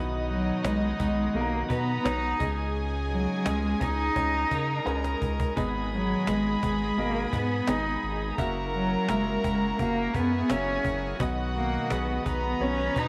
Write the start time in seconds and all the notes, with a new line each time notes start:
Already playing: B1 B2 D#3 F#3 B3 D#4 F#4 B4 D#5 F#5 D#6
0.30 F#3, cajon slap
0.47 cajon slap
0.63 B1 F#3 G#3 B3 D#4 F#4 B4 C#5, cajon slap
0.99 B1 F#3 G#3 B3 D#4 B4, cajon bass
1.34 B1 B2 A#3 F#4 A4, cajon slap
1.41 A#5
1.69 B2 F#3 B3 D#4 B4 A#5, cajon bass
2.04 B1 F#3 B3 D#4 F#4 B4 C#5, cajon slap
2.39 C#2 C#3 G#3 C#4 D#4 G#4 C#5 D#5 G#5, cajon bass
2.58 cajon slap
2.76 cajon slap
2.93 cajon slap
3.10 F#3, cajon slap
3.28 cajon slap
3.45 C#2 G#3 C#4 D#4 G#4 D#5, cajon slap
3.63 cajon slap
3.80 C#2 C#4 D#4 G#4, cajon bass
3.99 cajon slap
4.16 C#2 C#4 G#4 C#5, cajon bass
4.34 cajon slap
4.50 C#3 C#4 D#4 G#4 A#4 A#5, cajon bass, cajon slap
4.69 cajon slap
4.85 C#2 G#3 C#4 D#4 G#4 B4, cajon slap
5.04 cajon slap
5.22 C#2, cajon bass
5.40 cajon bass
5.56 G#1 G#2 D#3 G#3 B3 D#4 G#4 D#5 B5 D#6, cajon bass
5.93 F#3, cajon slap
6.10 cajon slap
6.26 G#1 G#3 B3 D#4 G#4 D#5, cajon slap
6.62 G#1 G#3 B3 D#4 G#4, cajon bass
6.81 cajon slap
6.97 G#1 B2 A#3 G#4 D#5, cajon slap
7.32 G#2 G#3 B3 D#4 G#4, cajon bass
7.67 G#1 G#3 B3 D#4 G#4 D#5, cajon slap
8.03 G#1, cajon slap
8.20 cajon slap
8.38 F#1 F#3 A#3 C#4 E4 F#4 A#4 E5 F#5 A#5 C#6, cajon bass
8.55 cajon slap
8.73 F#3, cajon slap
8.91 cajon slap
9.08 F#1 F#3 G#3 A#3 C#4 E4 F#4 A#4 E5, cajon slap
9.43 F#1 G#3 C#4 E4 A#4, cajon bass
9.79 F#1 A#3 F#4 A#4, cajon bass
10.14 F#2 B3 C#4 E4 G#4 A#4 G#5, cajon bass
10.49 F#1 F#3 A#3 C#4 E4 F#4 A#4 E5, cajon slap
10.85 F#1, cajon bass
11.02 cajon slap
11.20 B1 B2 D#3 F#3 B3 D#4 F#4 B4 D#5 F#5 D#6, cajon bass
11.55 A#3, cajon slap
11.73 cajon slap
11.89 B1 F#3 B3 D#4 F#4 G#4 B4, cajon slap
12.24 B1 F#3 B3 D#4 B4 A#5, cajon bass
12.60 B1 B3 C#4 F#4 C#5, cajon slap
12.95 B2 F#3 B3 D#4 B4, cajon bass